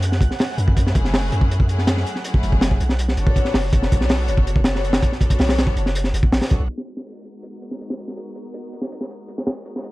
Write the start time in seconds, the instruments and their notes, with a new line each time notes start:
Already playing: 808-style bass F#2, string section F#3 A3 C#4 E4 G#4, synth texture F#5 F#6
0.02 closed hi-hat
0.12 snare
0.21 808-style bass C#2, kick, closed hi-hat
0.31 snare
0.39 snare, open hi-hat
0.49 string section F#3 A3 C#4 E4 G#4
0.58 808-style bass F#2, closed hi-hat
0.68 kick
0.76 string section F#3 A3 C#4 E4 G#4, kick, closed hi-hat
0.87 snare
0.95 808-style bass F#1, kick, closed hi-hat
1.05 snare
1.14 snare, open hi-hat
1.32 808-style bass F#2, closed hi-hat
1.41 kick
1.51 closed hi-hat
1.60 kick
1.69 string section F#3 A3 C#4 E4 G#4, closed hi-hat
1.78 snare
1.87 snare, closed hi-hat
1.97 snare
2.06 closed hi-hat
2.16 snare
2.24 string section F#3 A3 C#4 E4 G#4, closed hi-hat
2.34 kick
2.43 808-style bass F#1, closed hi-hat
2.52 kick
2.61 snare, closed hi-hat
2.71 kick
2.80 808-style bass B1, closed hi-hat
2.89 snare
2.99 closed hi-hat
3.08 snare
3.17 808-style bass F#1, string section B3 D4 F#4 A4 C#5, closed hi-hat
3.27 kick
3.36 kick, closed hi-hat
3.45 snare
3.54 808-style bass F#1, snare, open hi-hat
3.73 string section B3 D4 F#4 A4 C#5, kick, closed hi-hat
3.82 snare
3.92 808-style bass B1, kick, closed hi-hat
4.01 snare
4.09 snare, open hi-hat
4.28 808-style bass F#1, closed hi-hat
4.37 kick
4.47 closed hi-hat
4.56 kick
4.64 string section B3 D4 F#4 A4 C#5, snare, closed hi-hat
4.75 snare
4.84 closed hi-hat
4.93 snare, closed hi-hat
5.02 kick, closed hi-hat
5.12 snare
5.21 string section B3 D4 F#4 A4 C#5, kick, closed hi-hat
5.30 kick, closed hi-hat
5.39 808-style bass B1, snare, open hi-hat
5.49 snare, open hi-hat
5.58 snare, closed hi-hat
5.67 kick
5.76 808-style bass F#1, closed hi-hat
5.86 snare
5.95 closed hi-hat
6.04 snare
6.13 808-style bass F#1, closed hi-hat
6.23 kick
6.32 808-style bass A1, snare, open hi-hat
6.42 string section B3 D4 F#4 A4 C#5, snare, open hi-hat
6.50 808-style bass B1, kick, closed hi-hat
6.60 808-style bass B1
6.69 string section G#3 B3 D#4 F#4 A#4, closed hi-hat
6.78 snare
6.88 closed hi-hat
6.97 snare
7.06 open hi-hat
7.25 closed hi-hat
7.43 closed hi-hat
7.62 closed hi-hat
7.71 snare
7.81 closed hi-hat
7.90 snare
7.99 closed hi-hat
8.08 snare
8.17 closed hi-hat
8.35 closed hi-hat
8.54 closed hi-hat
8.73 closed hi-hat
8.81 snare
8.92 closed hi-hat
9.01 snare
9.10 closed hi-hat
9.28 closed hi-hat
9.38 snare
9.47 snare, open hi-hat
9.65 string section G#3 B3 D#4 F#4 A#4, closed hi-hat
9.76 snare
9.84 closed hi-hat